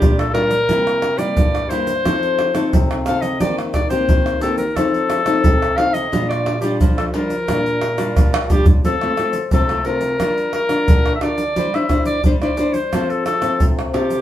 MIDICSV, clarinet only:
0, 0, Header, 1, 2, 480
1, 0, Start_track
1, 0, Key_signature, -2, "major"
1, 0, Tempo, 679502
1, 493, Time_signature, 4, 2, 24, 8
1, 6242, Key_signature, -1, "major"
1, 10041, End_track
2, 0, Start_track
2, 0, Title_t, "Clarinet"
2, 0, Program_c, 0, 71
2, 0, Note_on_c, 0, 67, 89
2, 104, Note_off_c, 0, 67, 0
2, 133, Note_on_c, 0, 69, 77
2, 234, Note_off_c, 0, 69, 0
2, 239, Note_on_c, 0, 70, 100
2, 836, Note_on_c, 0, 74, 89
2, 846, Note_off_c, 0, 70, 0
2, 1196, Note_on_c, 0, 72, 96
2, 1207, Note_off_c, 0, 74, 0
2, 1972, Note_off_c, 0, 72, 0
2, 2153, Note_on_c, 0, 77, 95
2, 2271, Note_on_c, 0, 75, 83
2, 2281, Note_off_c, 0, 77, 0
2, 2399, Note_off_c, 0, 75, 0
2, 2407, Note_on_c, 0, 74, 88
2, 2515, Note_off_c, 0, 74, 0
2, 2644, Note_on_c, 0, 74, 91
2, 2748, Note_off_c, 0, 74, 0
2, 2752, Note_on_c, 0, 72, 86
2, 3093, Note_off_c, 0, 72, 0
2, 3122, Note_on_c, 0, 69, 83
2, 3232, Note_off_c, 0, 69, 0
2, 3236, Note_on_c, 0, 70, 78
2, 3366, Note_on_c, 0, 69, 99
2, 3376, Note_off_c, 0, 70, 0
2, 4078, Note_on_c, 0, 77, 104
2, 4088, Note_off_c, 0, 69, 0
2, 4194, Note_on_c, 0, 75, 90
2, 4205, Note_off_c, 0, 77, 0
2, 4439, Note_off_c, 0, 75, 0
2, 4443, Note_on_c, 0, 74, 79
2, 4664, Note_off_c, 0, 74, 0
2, 4668, Note_on_c, 0, 67, 71
2, 4779, Note_off_c, 0, 67, 0
2, 4927, Note_on_c, 0, 69, 70
2, 4980, Note_off_c, 0, 69, 0
2, 5044, Note_on_c, 0, 70, 87
2, 5975, Note_off_c, 0, 70, 0
2, 6010, Note_on_c, 0, 67, 96
2, 6117, Note_off_c, 0, 67, 0
2, 6254, Note_on_c, 0, 69, 101
2, 6700, Note_off_c, 0, 69, 0
2, 6737, Note_on_c, 0, 69, 88
2, 6968, Note_on_c, 0, 70, 86
2, 6979, Note_off_c, 0, 69, 0
2, 7442, Note_off_c, 0, 70, 0
2, 7446, Note_on_c, 0, 70, 99
2, 7848, Note_off_c, 0, 70, 0
2, 7878, Note_on_c, 0, 76, 73
2, 7928, Note_on_c, 0, 74, 110
2, 7939, Note_off_c, 0, 76, 0
2, 8299, Note_on_c, 0, 76, 88
2, 8309, Note_off_c, 0, 74, 0
2, 8516, Note_off_c, 0, 76, 0
2, 8521, Note_on_c, 0, 74, 98
2, 8630, Note_off_c, 0, 74, 0
2, 8771, Note_on_c, 0, 74, 83
2, 9000, Note_on_c, 0, 72, 87
2, 9010, Note_off_c, 0, 74, 0
2, 9254, Note_on_c, 0, 69, 76
2, 9264, Note_off_c, 0, 72, 0
2, 9360, Note_off_c, 0, 69, 0
2, 9365, Note_on_c, 0, 69, 90
2, 9637, Note_off_c, 0, 69, 0
2, 9845, Note_on_c, 0, 67, 104
2, 10041, Note_off_c, 0, 67, 0
2, 10041, End_track
0, 0, End_of_file